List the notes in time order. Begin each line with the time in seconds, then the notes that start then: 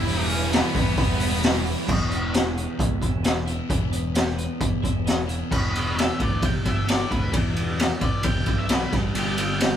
Already playing: E1 E3 B3 E4 G4 B4 E5 G5 B5
0.04 E3 G3 B3 E4, open hi-hat
0.27 B3 C#4 E4 C#5, open hi-hat
0.32 G3
0.51 E3 G3 B3 E4 G4 B4, snare, open hi-hat
0.74 E2 E3 G3 B3 E4, kick, open hi-hat
0.96 E1 E3 G3 B3 E4, kick, open hi-hat
1.20 E3 G3 B3 E4 G4, open hi-hat
1.41 E3 G3 B3 E4, snare, open hi-hat
1.64 G3 B3 E4, open hi-hat
1.85 E2 B2 E3, kick, crash
1.89 E1
2.10 B3, closed hi-hat
2.33 G4, snare, closed hi-hat
2.56 B3, closed hi-hat
2.79 C#2 E3, kick, closed hi-hat
3.01 E1 E4, kick, closed hi-hat
3.23 B3, snare, closed hi-hat
3.46 E2 B2 E3 E4, closed hi-hat
3.69 E1 E2 B2 E3, kick, closed hi-hat
3.92 B3, closed hi-hat
4.14 G4, snare, closed hi-hat
4.29 snare
4.37 B3, closed hi-hat
4.60 E1 E3, kick, closed hi-hat
4.82 E1 E4, kick, closed hi-hat
5.06 B3, snare, closed hi-hat
5.26 E2 B2 E3 E4, closed hi-hat
5.50 E1 E2 B2 E3 B4, kick, crash
5.72 E2 B2 B3, ride
5.94 E2 B2 E3, ride
5.99 E5, snare
6.17 D2 E2 B2 B3, kick, ride
6.23 D5
6.41 E1 E2 B2 G4, kick, ride
6.45 G5
6.64 G1 E2 B2 D4, kick, ride
6.68 E5
6.86 E2 B2 E3 G4 D5, snare, ride
7.10 D2 E2 B2 D4 B4, kick, ride
7.31 E2 B2 E3, kick, ride
7.55 E2 B2 B3, ride
7.77 E2 B2 E3, snare, ride
7.99 E1 E2 B2 B3 D5, kick, ride
8.23 E1 E2 B2 G4 G5, kick, ride
8.46 B1 E2 B2 D4, kick, ride
8.58 E5
8.69 E2 B2 E3 G4, snare, ride
8.73 B4
8.91 G1 G2 D3 G3, kick, snare, ride
9.13 G1 G2 D3 G3, ride
9.19 G4
9.37 G2 D3 B3, ride
9.42 G5
9.60 G2 D3 G3, snare, ride